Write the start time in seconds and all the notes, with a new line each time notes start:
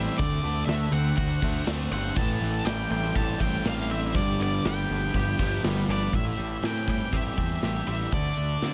Already playing: A2 E3 G3 A3 C4 E4 G4 E5
0.18 D2 D3 A3 D4 D5, kick, open hi-hat
0.43 D2 A3, snare
0.66 D2 D3 A3 F#4 E5, snare, open hi-hat
0.92 D2 A3 C4 F#5
1.17 D2 A3 F#4 F#5, kick, open hi-hat
1.41 D2 D3 A3 C4 D4, kick
1.66 D2 D3 A3 C4 D4, snare, open hi-hat
1.91 G1 D3 C4 F#5
2.16 A1 A2 E3 A3 A5, kick, open hi-hat
2.40 A1 E3 A3, snare
2.65 A1 E3 G3 G4 G5, snare, open hi-hat
2.90 A1 G3 C4 G5
3.04 snare
3.15 A1 A3 E4 G4 A5, kick, open hi-hat
3.39 A1 A2 E3 G3 A3 C4 G5, kick
3.63 A1 A2 E3 G3 A3 C4 F5, snare, open hi-hat
3.90 E3 C4 E5
4.13 G1 G2 D3 F3 G3 D5, kick, open hi-hat
4.39 G1 D3 B3 D5
4.65 G1 D3 G3 G4 G5, snare, open hi-hat
4.89 G1 F3 B3 D4
5.13 G1 B3 F4 G4, kick, open hi-hat
5.38 G1 G2 D3 F3 G3 B3, kick
5.63 G1 G2 D3 G3 B3, snare, open hi-hat
5.88 G1 D3 B3 D4 D5
6.13 A1 A2 E3 E5, kick, open hi-hat
6.37 A1 G3 G4, open hi-hat
6.62 A2 E3 C4 G5, snare, open hi-hat
6.87 E3 G3 G5, kick, open hi-hat
7.12 A1 C4 G4 E5, kick, open hi-hat
7.37 E2 E3 A3 C4, kick, open hi-hat
7.62 A1 G3 G4, snare, open hi-hat
7.87 A1 G3 C4 E4 E5, open hi-hat
8.12 D2 D3 A3 D5, kick, open hi-hat
8.37 D2 A3 F#4, open hi-hat
8.62 D3 C4, snare, open hi-hat